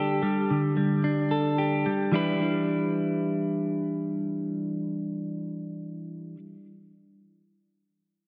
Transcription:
0.00 0.22 D3 soft
0.00 0.22 G3 soft
0.00 0.77 D4 soft
0.00 1.31 G4 soft
0.00 1.04 A4 soft
0.23 0.76 G3 soft
0.50 1.87 D3 soft
0.77 1.85 G3 soft
1.04 2.13 D4 soft
1.31 2.13 A4 soft
1.58 2.13 G4 soft
1.86 2.12 G3 soft
2.12 6.35 E3 soft
2.12 6.36 G3 soft
2.12 6.37 D4 soft
2.12 6.38 E4 soft
2.12 6.39 B4 soft

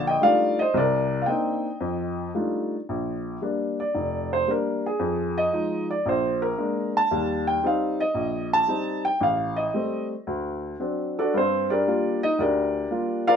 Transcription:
0.00 0.15 A#1 medium
0.00 0.15 D3 medium
0.07 0.23 D#5 medium
0.07 0.22 G5 medium
0.21 0.60 G3 medium
0.21 0.60 A3 soft
0.21 0.60 D4 soft
0.21 0.60 D#4 soft
0.21 0.60 F4 medium
0.21 0.57 F5 medium
0.25 0.58 D5 medium
0.59 0.76 C5 medium
0.59 0.74 D#5 medium
0.74 1.21 C2 medium
0.74 1.21 C3 medium
0.74 1.26 D5 medium
0.79 1.23 A#4 medium
1.22 1.27 F5 medium
1.26 1.66 A#3 soft
1.26 1.66 C4 soft
1.26 1.66 D4 soft
1.26 1.66 D#4 medium
1.26 2.31 D#5 medium
1.26 2.31 G5 medium
1.80 2.28 F2 medium
2.35 2.74 G3 soft
2.35 2.74 A3 soft
2.35 2.74 D4 soft
2.35 2.74 D#4 soft
2.35 2.74 F4 soft
2.89 3.36 A#1 medium
3.42 3.80 G3 soft
3.42 3.81 A#3 soft
3.42 3.81 D4 medium
3.80 4.29 D5 medium
3.95 4.41 F1 medium
4.33 4.49 C5 medium
4.47 4.86 G3 soft
4.47 4.86 A#3 soft
4.47 4.86 D4 medium
4.47 4.85 A#4 medium
4.86 5.34 G#4 medium
4.99 5.46 F2 medium
5.38 5.86 D#5 medium
5.53 5.90 F3 soft
5.53 5.91 G#3 soft
5.53 5.91 D#4 medium
5.91 6.06 D5 medium
6.06 6.51 A#1 medium
6.06 6.42 C5 medium
6.42 6.91 A#4 medium
6.58 6.96 G#3 medium
6.58 6.96 A#3 soft
6.58 6.96 D4 medium
6.97 7.44 A5 medium
7.11 7.57 D#2 medium
7.11 7.57 G3 medium
7.47 7.63 G5 medium
7.63 8.01 G3 medium
7.63 8.01 C4 soft
7.63 8.01 D#4 medium
7.63 8.00 F5 medium
8.00 8.48 D#5 medium
8.15 8.61 A#1 medium
8.53 9.01 A5 loud
8.68 9.05 G3 soft
8.68 9.06 C4 soft
8.68 9.06 D#4 medium
9.05 9.20 G5 medium
9.20 9.66 A1 medium
9.20 9.57 F5 medium
9.56 10.06 D#5 medium
9.74 10.12 G3 medium
9.74 10.12 A3 soft
9.74 10.12 C4 medium
10.27 10.73 D2 medium
10.80 11.18 F#3 soft
10.80 11.18 C4 soft
10.80 11.18 D4 medium
11.19 11.34 D4 medium
11.19 11.34 F#4 medium
11.19 11.34 A4 medium
11.19 11.34 D5 medium
11.34 11.80 G2 medium
11.34 11.71 C4 medium
11.34 11.71 C5 medium
11.70 12.19 D4 medium
11.70 12.19 G4 medium
11.70 12.20 A#4 medium
11.70 12.19 D5 medium
11.87 12.24 G3 medium
11.87 12.24 A#3 soft
11.87 12.25 F4 medium
12.23 12.39 D#4 medium
12.23 12.39 D#5 medium
12.39 12.84 D2 medium
12.39 13.24 D4 medium
12.39 13.24 G4 medium
12.39 13.24 A#4 medium
12.39 13.24 D5 medium
12.91 13.28 G3 soft
12.91 13.28 A#3 soft
12.91 13.27 F4 medium
13.28 13.36 F4 medium
13.28 13.36 A#4 medium
13.28 13.36 D5 medium
13.28 13.36 F5 loud

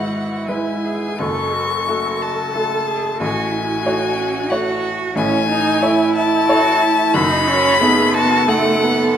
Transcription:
0.00 1.16 G#1 medium
0.00 1.16 G#2 medium
0.00 0.45 G#3 soft
0.00 0.45 E4 soft
0.00 1.16 E4 soft
0.00 0.52 F#4 medium
0.00 0.45 B4 soft
0.00 0.47 F#5 medium
0.47 1.16 G#3 soft
0.47 1.16 E4 soft
0.47 0.86 E4 medium
0.47 1.16 B4 soft
0.47 1.20 G#5 medium
0.85 1.19 G#4 medium
1.19 3.16 F#1 medium
1.19 3.15 F#2 medium
1.19 1.56 A4 medium
1.19 3.21 A4 medium
1.19 2.23 C#6 loud
1.54 1.88 F#4 medium
1.88 2.50 A3 soft
1.88 2.56 F#4 medium
1.88 2.51 F#4 medium
1.88 2.51 A4 soft
2.21 3.20 A5 medium
2.54 3.16 A3 soft
2.54 3.17 F#4 soft
2.54 2.89 A4 medium
2.54 3.17 A4 medium
2.87 3.19 G#4 medium
3.20 5.13 A1 medium
3.20 5.13 A2 medium
3.20 3.53 F#4 medium
3.20 5.15 F#4 medium
3.20 4.51 G#5 loud
3.52 3.84 E4 medium
3.83 4.47 A3 soft
3.83 4.17 D#4 medium
3.83 4.47 F#4 medium
3.83 4.47 C#5 medium
4.17 4.54 C#4 medium
4.50 5.12 A3 medium
4.50 5.13 F#4 medium
4.50 5.17 F#4 medium
4.50 5.13 C#5 medium
4.50 4.83 F#5 medium
5.15 7.11 A1 medium
5.15 7.11 A2 medium
5.15 5.46 C#4 medium
5.15 5.48 E4 medium
5.15 6.12 G#5 loud
5.49 5.84 D#4 medium
5.82 6.45 A3 medium
5.82 6.45 E4 medium
5.82 7.15 E4 medium
5.82 6.49 E4 medium
5.82 6.45 C#5 medium
6.16 7.15 A5 loud
6.48 7.11 A3 medium
6.48 7.11 E4 medium
6.48 6.84 F#4 medium
6.48 7.11 C#5 medium
6.82 7.17 E4 medium
7.14 9.15 F#1 medium
7.14 9.15 F#2 loud
7.14 7.48 D#4 loud
7.14 7.50 D#4 medium
7.14 8.15 B5 loud
7.47 7.83 C#4 loud
7.47 7.81 F#4 medium
7.79 8.44 A3 medium
7.79 8.49 B3 medium
7.79 8.44 D#4 medium
7.79 8.16 G#4 medium
7.79 8.44 A4 medium
8.14 8.48 F#4 loud
8.14 8.50 A5 loud
8.47 9.16 A3 medium
8.47 8.85 A3 loud
8.47 9.16 D#4 medium
8.47 9.16 A4 medium
8.47 9.17 A4 loud
8.47 9.17 F#5 loud
8.83 9.17 B3 medium

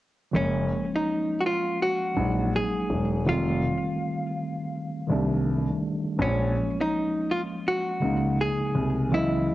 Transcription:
0.32 0.68 F#1 medium
0.32 1.33 F3 medium
0.32 1.33 G#3 medium
0.32 1.34 A#3 medium
0.36 1.35 C#4 medium
0.36 0.90 C#4 medium
0.96 1.41 D#4 medium
1.40 1.44 F#4 medium
1.46 1.82 F4 medium
1.82 2.55 F#4 medium
2.14 2.51 A#1 medium
2.14 2.88 F#3 medium
2.14 2.89 G#3 medium
2.14 2.90 A#3 medium
2.19 2.90 D#4 medium
2.56 3.24 G#4 medium
2.90 3.24 E1 medium
3.25 3.60 F1 medium
3.25 4.25 D#3 medium
3.25 4.26 G3 medium
3.25 4.27 A3 medium
3.29 4.27 C4 medium
3.29 5.43 F4 medium
5.07 5.65 C2 medium
5.07 5.81 D#3 medium
5.07 5.81 G3 medium
5.07 5.82 A3 medium
5.11 5.83 D4 medium
6.18 6.53 A#1 loud
6.18 7.19 F3 medium
6.18 7.19 G#3 medium
6.18 7.20 A#3 medium
6.18 6.81 C#4 medium
6.22 6.29 C4 medium
6.29 7.24 C#4 medium
6.81 7.32 D#4 medium
7.31 7.41 F4 medium
7.68 8.41 F#4 loud
8.00 8.36 C#2 medium
8.00 8.74 C#3 medium
8.00 8.74 G#3 medium
8.00 8.75 A#3 medium
8.04 8.76 D#4 medium
8.41 9.15 G#4 medium
8.75 9.09 C2 medium
9.09 9.46 C#2 medium
9.09 9.54 E3 medium
9.09 9.54 F#3 medium
9.09 9.54 B3 medium
9.13 9.54 E4 medium
9.13 9.54 D#5 medium

